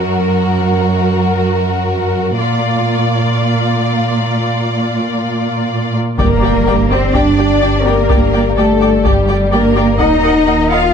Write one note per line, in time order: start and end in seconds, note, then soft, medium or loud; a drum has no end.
0.00 2.38 F#2 medium
0.00 2.34 F#4 medium
0.00 2.34 A#4 medium
2.38 5.95 A#2 soft
2.38 5.95 F4 soft
2.38 5.95 D5 soft
6.18 10.00 G1 medium
6.18 6.61 G2 soft
6.18 6.87 A#3 medium
6.18 9.96 G4 medium
6.18 6.27 G4 soft
6.18 6.86 A#4 medium
6.18 6.27 D5 soft
6.18 9.96 D5 medium
6.18 6.27 G5 soft
6.18 taiko medium
6.18 impact medium
6.42 6.50 G4 soft
6.42 6.50 D5 soft
6.42 6.53 G5 soft
6.66 7.09 G2 soft
6.66 6.74 G4 soft
6.66 6.74 D5 soft
6.66 6.75 G5 soft
6.90 7.14 C4 medium
6.90 6.98 G4 soft
6.90 7.15 C5 soft
6.90 6.98 D5 soft
6.90 6.99 G5 soft
7.14 7.56 G2 soft
7.14 7.85 D4 medium
7.14 7.22 G4 soft
7.14 7.22 D5 soft
7.14 7.85 D5 medium
7.14 7.22 G5 soft
7.14 taiko medium
7.37 7.46 G4 soft
7.37 7.45 D5 soft
7.37 7.47 G5 soft
7.61 8.04 G2 soft
7.61 7.70 G4 soft
7.61 7.69 D5 soft
7.61 7.70 G5 soft
7.85 8.57 A#3 medium
7.85 7.94 G4 soft
7.85 8.57 A#4 medium
7.85 7.93 D5 soft
7.85 7.95 G5 soft
8.09 8.51 G2 soft
8.09 8.17 G4 soft
8.09 8.17 D5 soft
8.09 8.18 G5 soft
8.09 taiko medium
8.33 8.41 G4 soft
8.33 8.41 D5 soft
8.33 8.41 G5 soft
8.56 8.99 G2 soft
8.56 9.04 A3 medium
8.56 8.65 G4 soft
8.56 9.03 A4 soft
8.56 8.64 D5 soft
8.56 8.66 G5 soft
8.81 8.89 G4 soft
8.81 8.89 D5 soft
8.81 8.89 G5 soft
9.04 9.46 G2 soft
9.04 9.52 G3 medium
9.04 9.12 G4 soft
9.04 9.52 G4 soft
9.04 9.12 D5 soft
9.04 9.13 G5 soft
9.04 taiko medium
9.28 9.36 G4 soft
9.28 9.36 D5 soft
9.28 9.36 G5 soft
9.52 9.94 G2 soft
9.52 10.00 A#3 medium
9.52 9.60 G4 soft
9.52 9.99 A#4 medium
9.52 9.60 D5 soft
9.52 9.60 G5 soft
9.75 9.83 G4 soft
9.75 9.83 D5 soft
9.75 9.84 G5 soft
9.99 10.94 D#1 medium
9.99 10.42 D#2 medium
9.99 10.71 D#4 medium
9.99 10.94 F#4 medium
9.99 10.07 A#4 soft
9.99 10.94 A#4 medium
9.99 10.07 D#5 soft
9.99 10.69 D#5 medium
9.99 10.07 F#5 soft
9.99 taiko medium
10.23 10.31 A#4 soft
10.23 10.31 D#5 soft
10.23 10.32 F#5 soft
10.46 10.89 D#2 medium
10.46 10.55 A#4 soft
10.46 10.55 D#5 soft
10.46 10.54 F#5 soft
10.70 10.94 F4 medium
10.70 10.79 A#4 soft
10.70 10.80 D#5 soft
10.70 10.94 F5 medium
10.70 10.78 F#5 soft